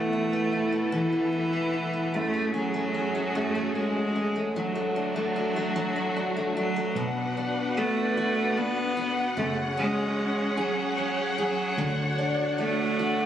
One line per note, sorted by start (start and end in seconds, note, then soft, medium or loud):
0.00 2.12 B2 medium
0.00 0.91 E3 medium
0.00 2.12 E3 medium
0.00 0.94 A3 medium
0.00 2.12 A3 soft
0.00 0.32 B3 soft
0.00 2.12 E4 medium
0.00 2.13 A4 medium
0.13 0.52 E4 soft
0.33 0.71 B3 soft
0.53 1.31 E4 soft
0.72 1.11 B3 soft
0.92 2.22 E3 medium
0.92 2.16 E3 medium
1.12 1.52 B3 soft
1.33 1.72 E4 soft
1.53 1.92 B3 medium
1.74 2.22 E4 soft
1.93 2.22 B3 soft
2.14 3.34 F#2 medium
2.14 4.53 A2 medium
2.14 4.53 F#3 medium
2.14 2.54 A3 medium
2.14 4.53 C#4 medium
2.14 4.53 F#4 medium
2.14 4.53 G#4 medium
2.34 2.74 A3 soft
2.54 3.37 F#3 medium
2.54 2.93 C#4 soft
2.74 3.14 A3 soft
2.94 3.74 C#4 soft
3.15 3.55 A3 soft
3.35 4.64 F#2 medium
3.35 3.75 A3 medium
3.55 4.35 A3 soft
3.75 4.52 G#3 medium
3.75 4.14 C#4 soft
4.16 4.64 C#4 soft
4.36 4.75 A3 soft
4.55 6.94 A2 medium
4.55 6.94 D3 medium
4.55 6.94 F#3 medium
4.55 5.75 F#3 medium
4.55 6.53 F#3 medium
4.55 6.94 D4 medium
4.55 6.94 F#4 medium
4.75 5.15 A3 soft
4.96 5.36 D4 soft
5.16 5.55 A3 soft
5.36 6.16 D4 soft
5.56 5.95 A3 soft
5.76 9.26 F#3 medium
5.96 6.35 A3 soft
6.16 6.56 D4 soft
6.37 6.75 A3 soft
6.56 7.32 F#3 medium
6.56 7.37 D4 soft
6.76 7.04 A3 soft
6.96 9.33 B1 medium
6.96 9.37 B2 medium
6.96 9.34 D4 medium
6.96 9.35 F#4 medium
6.96 9.35 B4 medium
6.96 13.26 F#5 medium
7.37 8.56 D4 soft
7.77 8.59 A3 medium
7.77 9.46 B3 soft
8.17 8.96 F#4 medium
8.57 9.37 B3 loud
8.57 9.45 D4 soft
8.97 10.57 F#4 medium
9.37 11.74 F#1 medium
9.37 11.78 F#2 medium
9.37 9.56 A3 medium
9.37 11.75 C#4 medium
9.37 11.76 G#4 medium
9.37 13.26 C#5 medium
9.77 10.60 G#3 medium
9.77 10.97 C#4 medium
10.57 11.38 F#3 medium
10.57 11.37 G#4 medium
10.98 11.86 C#4 medium
11.38 12.15 F#3 medium
11.38 11.86 G#4 medium
11.78 13.26 D2 medium
11.78 13.26 D3 medium
11.78 13.26 D4 medium
11.78 13.26 F#4 medium
12.18 13.26 D4 medium
12.58 13.26 A3 medium
12.99 13.26 F#4 medium